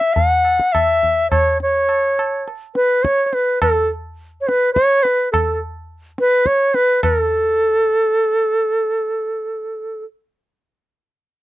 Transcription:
Already playing: E5
0.01 tabla te
0.14 F#5, tabla tin, tabla ge
0.45 tabla na
0.59 tabla ke
0.72 E5, tabla na, tabla ge
1.03 tabla ge
1.31 C#5, tabla na, tabla ge
1.60 C#5, tabla te
1.89 tabla na
2.19 tabla na
2.48 tabla tin
2.75 B4, tabla te
3.03 C#5, tabla ke
3.26 C#5
3.33 B4, tabla te
3.62 A4, tabla na, tabla ge
4.41 C#5
4.48 B4, tabla te
4.73 C#5, tabla ke
5.03 B4, tabla te
5.32 A4, tabla na, tabla ge
6.18 B4, tabla te
6.46 C#5, tabla ke
6.74 B4, tabla te
7.03 A#4, tabla na, tabla ge
7.20 A4

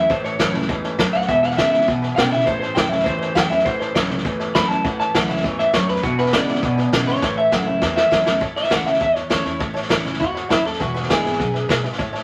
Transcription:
0.09 A1 A2 E3 C5 C#5 E5 A5, kick, snare
0.24 C#5 E5 A5, snare
0.39 D2 A2 E3 F#3 A3 C#4 E4 C#5 E5 A5, kick, snare, hi-hat pedal
0.54 C#2 C#4 E4 C#5 E5 A5, snare
0.62 snare
0.69 E2 G#2 A2 E3 C#5 E5 A5, kick, snare
0.84 C#5 E5 A5, snare
0.99 E2 F#2 A2 F#3 C#5 E5 A5, kick, snare, hi-hat pedal
1.13 D2 C#5 E5 F#5 A5, snare
1.21 snare
1.28 E1 E2 B2 B4 E5 G#5, kick, snare
1.43 B4 E5 F#5 G#5, snare
1.51 snare
1.57 E2 C#3 D3 G#3 B3 E4 B4 E5 G#5, kick, snare, hi-hat pedal
1.72 G#1 B3 E4 B4 E5 G#5, snare
1.81 snare
1.88 B1 E2 B2 B4 E5 G#5, kick, snare
2.02 B4 E5 G#5, snare
2.16 B1 E2 C#3 D3 G#3 B3 E4 B4 E5 G5 G#5, kick, snare, hi-hat pedal
2.31 B1 B3 E4 B4 E5 G#5, snare
2.40 snare
2.46 A1 A2 E3 C5 C#5 E5 A5, kick, snare
2.60 C5 C#5 E5 A5, snare
2.75 D2 A2 E3 F#3 A3 C#4 E4 C#5 E5 G5 A5, kick, snare, hi-hat pedal
2.89 C#2 C#4 E4 C#5 E5 A5, snare
2.99 snare
3.04 E2 A2 E3 C5 C#5 E5 A5, kick, snare
3.20 C5 C#5 E5 A5, snare
3.35 E2 A2 E3 F#3 A3 C#4 E4 C#5 E5 G5 A5, kick, snare, hi-hat pedal
3.50 E2 C#4 E4 C#5 E5 G#5, snare
3.59 snare
3.65 A1 A2 E3 C5 C#5 E5 F#5, kick, snare
3.80 C5 C#5 E5 A5, snare
3.94 D2 A2 E3 F#3 A3 C#4 E4 C#5 E5 B5, kick, snare, hi-hat pedal
4.10 C#2 C#4 E4 C#5 E5 B5, snare
4.18 snare
4.25 E2 A2 E3 C#5 E5 G#5, kick, snare
4.40 C#5 E5 A5, snare
4.55 E2 A2 E3 F#3 A3 C#4 E4 C#5 E5 A5 B5, kick, snare, hi-hat pedal
4.68 E2 C#4 E4 C#5 E5 A5, snare
4.84 A1 A2 E3 C#5 E5 F#5 A5, kick, snare
4.99 C#5 E5 A5, snare
5.14 D2 A2 E3 F#3 A3 C#4 E4 C#5 E5 F#5 A5, kick, snare, hi-hat pedal
5.29 C#2 C#5 E5 B5, snare
5.37 snare
5.43 E2 G#2 A2 E3 C#5 E5 G#5, kick, snare
5.59 C#5 E5 A5, snare
5.73 E2 F#2 A2 F#3 C#5 E5 A5, kick, snare, hi-hat pedal
5.88 E2 B4 C#5 E5 A5, snare
5.96 snare
6.03 E1 E2 B2 F#4 B4 E5 G#5, kick, snare
6.18 B4 E5 G#5, snare
6.26 snare
6.33 E2 C#3 D3 G#3 B3 E4 B4 D5 E5 G#5, kick, snare, hi-hat pedal
6.47 G#1 B3 E4 B4 E5 F#5, snare
6.55 snare
6.62 B1 E2 B2 B4 E5 G#5, kick, snare
6.77 B4 E5 G#5, snare
6.92 B1 E2 C#3 G#3 B3 E4 B4 E5 G#5, kick, snare, hi-hat pedal
7.07 G#1 B4 C#5 E5 F#5, snare
7.15 snare
7.22 A2 E3 C#5 E5 A5, kick, snare
7.37 C#5 E5 A5
7.51 D2 A2 E3 F#3 A3 C#4 E4 C#5 E5 F#5 A5, kick, snare, hi-hat pedal
7.66 C#2 C#4 E4 C#5 E5 A5
7.82 E2 A2 E3 C#5 E5 A5, kick, snare
7.96 C#5 E5 A5, snare
8.11 E2 A2 E3 F#3 A3 C#4 E4 C#5 E5 A5, kick, snare, hi-hat pedal
8.26 E2 C#4 E4 C#5 E5 A5, snare
8.40 A1 A2 C#5 E5 A5, kick, snare
8.56 C#5 E5 A5, snare
8.63 snare
8.70 D2 E3 A3 C#4 E4 C#5 E5 F#5 G#5, kick, snare, hi-hat pedal
8.85 C#2 C#4 E4 C#5 E5 A5, snare
8.94 snare
9.00 E2 C#5 E5 A5, kick, snare
9.16 C#5 E5 A5, snare
9.30 E2 E3 A3 C#4 E4 C#5 E5 A5, kick, snare, hi-hat pedal
9.45 E2 C#4 E4 C#5 E5 A5, snare
9.59 A1 A2 C#5 E5 A5, kick, snare
9.74 C#5 E5 A5, snare
9.83 snare
9.89 D2 E3 A3 C#4 E4 C#5 E5 A5, kick, snare, hi-hat pedal
10.05 C#2 C#4 E4 C#5 E5 G#5, snare
10.13 snare
10.19 E2 G#2 F#4 C#5 E5 A5, kick, snare
10.35 C#5 E5 B5, snare
10.49 E2 F#2 E4 C#5 E5 A5, kick, snare, hi-hat pedal
10.65 D#2 A4 C#5 E5 A5, snare
10.73 snare
10.80 E1 E2 F#4 B4 E5 G#5, kick, snare
10.94 B4 E5 G#5, snare
11.03 snare
11.09 A1 D3 G#3 B3 E4 G#4 B4 E5 G#5, kick, snare, hi-hat pedal
11.23 G#1 B3 E4 B4 E5 G#5, snare
11.33 snare
11.38 B1 F#2 B4 E5 F#5, kick, snare
11.54 B4 E5 G#5, snare
11.69 B1 G#2 B4 E5 G#5, kick, snare, hi-hat pedal
11.84 G#1 B4 E5 G#5, snare
11.92 snare
11.98 A1 A2 C#5 E5 A5, kick, snare
12.13 C#5 E5 A5, snare

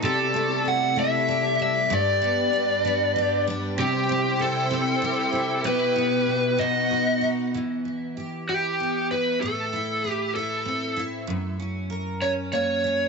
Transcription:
Already playing: A4
0.02 C3 G3 E4 G4 A4 D5
0.34 A3
0.65 E4 F#5
0.96 A3 E5
1.28 G4
1.59 E4 E5
1.90 G2 D4 G4 B4 D5
2.22 B3
2.53 D4
2.85 B3
3.16 G4
3.47 D4
3.78 C3 E4 G4 C5 G5
4.09 C4
4.39 E4 A4
4.71 C4
5.02 G4
5.33 E4
5.64 B2 B3 G4 B4
5.96 B3
6.27 E4
6.58 B2 B3 D#4 F#4 D#5 F#5
6.91 F#4
7.21 D#4
7.54 E3
7.85 E4
8.17 G4
8.49 E4 G4
8.80 B3
9.11 E4 B4
9.41 A2 A4
9.73 E4
10.04 B4
10.09 G4
10.35 E4 A4
10.65 C4
10.97 E4
11.27 F#2
11.60 C#4
11.90 A#4
12.21 C#4 C#5
12.53 A#3 C#5
12.84 C#4

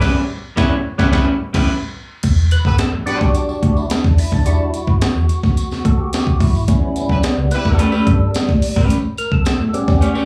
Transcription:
0.01 A1 G3 B3 C#4 E4 G4 B4, kick, snare, crash
0.56 A1 G3 B3 C#4 E4 G4 B4 C#5, kick, snare
0.98 A1 G3 B3 C#4 E4 G4 B4 C#5, kick, snare
1.11 A1 G3 B3 C#4 E4 G4 B4 C#5, kick, snare
1.53 A1 G3 C#4 E4 G4 B4, kick, snare, crash
2.23 E1, kick, closed hi-hat, crash, tambourine
2.51 B4, closed hi-hat, tambourine
2.65 G1 B3 G4 A4 B4, kick, tambourine
2.78 A4, snare, closed hi-hat, tambourine
2.93 A1
3.06 G3 B3 D4 F#4 G4 B4, snare, closed hi-hat, tambourine
3.21 B1, kick, snare, tambourine
3.35 closed hi-hat, tambourine
3.49 G4, tambourine
3.63 D2, kick, closed hi-hat
3.77 E4, tambourine
3.90 D4, snare, closed hi-hat, tambourine
4.04 E2, kick, snare
4.18 E4, open hi-hat, tambourine
4.32 D#1 D4, kick, snare, tambourine
4.45 E1 G3 D4 E4 F#4, closed hi-hat, tambourine
4.74 closed hi-hat, tambourine
4.87 G1, kick
5.01 muted fingered electric bass stroke, snare, closed hi-hat, tambourine
5.16 E2
5.29 closed hi-hat, tambourine
5.43 D2, kick, snare, tambourine
5.57 closed hi-hat, tambourine
5.71 muted fingered electric bass stroke, snare, tambourine
5.85 D2 A4, kick, closed hi-hat
5.99 G4
6.12 G4, snare, closed hi-hat, tambourine
6.27 kick
6.40 B1 E4, kick, open hi-hat, tambourine
6.54 G#1, tambourine
6.67 A1 G3 B3 C#4, kick, closed hi-hat, tambourine
6.82 E4
6.96 closed hi-hat, tambourine
7.09 B1 C#4 E4 G4 B4, kick
7.23 B3, snare, closed hi-hat, tambourine
7.38 C#2
7.51 E4 G4 B4, snare, closed hi-hat, tambourine
7.65 E2 A4, kick, snare
7.78 A3 C#4 G4 A4 B4, closed hi-hat, tambourine
7.92 A3 C#4 G4 B4, tambourine
8.07 G2, kick, closed hi-hat
8.34 snare, closed hi-hat, tambourine
8.49 A2, kick, snare
8.62 open hi-hat, tambourine
8.76 G#1 A3 C#4 G4 B4, kick, snare, tambourine
8.89 A1, closed hi-hat, tambourine
9.17 A#4, closed hi-hat, tambourine
9.32 B1 A4, kick
9.45 A4, muted fingered electric bass stroke, snare, closed hi-hat, tambourine
9.60 A2
9.73 G3 B3 C#4 G4, closed hi-hat, tambourine
9.88 E2, kick, snare, tambourine
10.01 A3 C#4 G4 C#5, closed hi-hat, tambourine
10.15 A3 C#4 G4 C#5, muted fingered electric bass stroke, tambourine

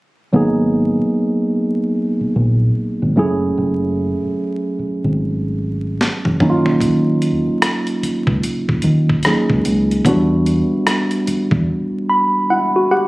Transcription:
0.33 G#1 F#3 A#3 B3 D#4 G#4
0.99 muted fingered electric bass stroke
2.21 muted fingered electric bass stroke
2.36 A#1
3.02 G#1
3.16 F#1 F#3 A3 C#4 E4 G#4
3.58 F#1
4.23 muted fingered electric bass stroke
4.79 muted fingered electric bass stroke
5.04 G#1
6.01 snare
6.25 F#1, high tom
6.40 D#2 F#3 A#3 C#4 D#4 E4, mid tom
6.50 F4
6.66 floor tom
6.81 kick, closed hi-hat
7.22 closed hi-hat
7.47 muted fingered electric bass stroke
7.62 cross-stick, closed hi-hat
7.87 closed hi-hat
8.03 muted fingered electric bass stroke, closed hi-hat
8.27 C#2, kick
8.43 closed hi-hat
8.69 muted fingered electric bass stroke, kick
8.82 D#2, closed hi-hat
9.09 kick
9.23 F#3 A#3 C#4 D#4, cross-stick, closed hi-hat
9.27 G#4
9.50 C#2, kick
9.65 C#2, closed hi-hat
9.91 closed hi-hat
10.05 E2 F#3 B3 D4 E4 F#4, kick, closed hi-hat
10.12 G3
10.46 closed hi-hat
10.72 muted fingered electric bass stroke
10.87 cross-stick, closed hi-hat
11.11 closed hi-hat
11.27 muted fingered electric bass stroke, closed hi-hat
11.51 E2, kick
12.10 B5
12.50 E4 F#5
12.76 F#4
12.91 G4 F#5

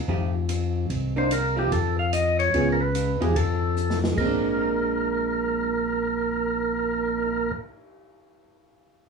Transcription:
0.08 F2 F3 A3 D#4 G4, kick
0.49 hi-hat pedal, ride
0.90 C2, kick, ride
1.16 D#3 A#3 D4 C5
1.31 A#4, hi-hat pedal, ride
1.57 F3 A3 D#4 G4
1.71 F2 A4, kick, ride
1.99 F5
2.13 D#5, hi-hat pedal, ride
2.39 C#5, ride
2.53 C#2 B3 F4 G#4, kick, ride
2.72 A#4
2.81 B4
2.95 hi-hat pedal, ride
3.20 E2 F3 A3 D#4 G4 G#4, ride
3.36 F2 A4, kick, ride
3.77 hi-hat pedal
3.90 snare
4.04 snare
4.13 A#1 G#3
4.17 C4 A#4, kick, crash
4.26 D4
4.44 cymbal swell

